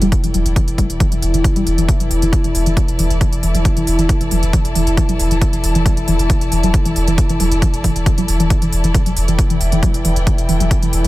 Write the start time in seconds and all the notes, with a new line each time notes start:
Already playing: E3 E4 A4 D5 G5
0.01 E1 G3, closed hi-hat
0.12 kick, closed hi-hat
0.24 E1 E3, closed hi-hat
0.34 E1 F#3, closed hi-hat
0.46 E1, closed hi-hat
0.56 E3, kick, closed hi-hat
0.68 E1, closed hi-hat
0.78 E1 G3, kick, closed hi-hat
0.90 E1, closed hi-hat
1.00 E3, kick, closed hi-hat
1.12 E1 F#3, closed hi-hat
1.22 E1, closed hi-hat
1.34 E1 E3, closed hi-hat
1.44 kick, closed hi-hat
1.56 E1 G3, closed hi-hat
1.66 E1, closed hi-hat
1.78 E1 E3, closed hi-hat
1.89 E3, kick, closed hi-hat
2.00 E1 F#3, closed hi-hat
2.11 E1, open hi-hat
2.22 E1 E3 A5, closed hi-hat
2.33 kick, closed hi-hat
2.44 E1 E3, closed hi-hat
2.55 E1, open hi-hat
2.66 E1 E3, closed hi-hat
2.77 F#3, kick, closed hi-hat
2.88 E1, closed hi-hat
2.99 E1 E3, open hi-hat
3.10 E1, closed hi-hat
3.21 E3, kick, closed hi-hat
3.33 E1, closed hi-hat
3.43 E1 E3, open hi-hat
3.54 E1 F#3, closed hi-hat
3.65 kick, closed hi-hat
3.77 E1 E3, closed hi-hat
3.87 E1, open hi-hat
3.99 E1 E3, closed hi-hat
4.09 kick, closed hi-hat
4.21 E1 E3, closed hi-hat
4.31 E1 F#3, open hi-hat
4.43 E1, closed hi-hat
4.53 E3, kick, closed hi-hat
4.65 E1, closed hi-hat
4.75 E1 E3, open hi-hat
4.87 E1, closed hi-hat
4.97 E3, kick, closed hi-hat
5.09 E1 F#3, closed hi-hat
5.19 E1, open hi-hat
5.31 E1 E3, closed hi-hat
5.42 kick, closed hi-hat
5.53 E1 E3, closed hi-hat
5.64 E1, open hi-hat
5.75 E1 E3, closed hi-hat
5.86 F#3, kick, closed hi-hat
5.97 E1, closed hi-hat
6.08 E1 E3, open hi-hat
6.19 E1, closed hi-hat
6.30 E3, kick, closed hi-hat
6.41 E1, closed hi-hat
6.52 E1 E3, open hi-hat
6.63 E1 F#3, closed hi-hat
6.74 kick, closed hi-hat
6.85 E1 E3, closed hi-hat
6.96 E1, open hi-hat
7.07 E1 E3, closed hi-hat
7.18 kick, closed hi-hat
7.29 E1 E3, closed hi-hat
7.40 E1 F#3, open hi-hat
7.51 E1, closed hi-hat
7.62 E3, kick, closed hi-hat
7.73 E1, closed hi-hat
7.84 E1 E3, kick, open hi-hat
7.96 E1, closed hi-hat
8.06 E3, kick, closed hi-hat
8.18 E1 F#3, closed hi-hat
8.28 E1, open hi-hat
8.40 E1 E3, closed hi-hat
8.50 kick, closed hi-hat
8.62 E1 E3, closed hi-hat
8.72 E1, open hi-hat
8.84 E1 E3, closed hi-hat
8.94 E3 E4, kick, closed hi-hat
9.06 E1 F#3, closed hi-hat
9.16 E1, open hi-hat
9.28 E1 E3 G5, closed hi-hat
9.39 kick, closed hi-hat
9.50 E1 E3, closed hi-hat
9.61 E1, open hi-hat
9.72 E1 E3, closed hi-hat
9.83 F#3, kick, closed hi-hat
9.94 E1, closed hi-hat
10.05 E1 E3, open hi-hat
10.16 E1, closed hi-hat
10.27 E3, kick, closed hi-hat
10.38 E1, closed hi-hat
10.49 E1 E3, open hi-hat
10.60 E1 F#3, closed hi-hat
10.71 kick, closed hi-hat
10.82 E1 E3, closed hi-hat
10.93 E1, open hi-hat
11.04 E3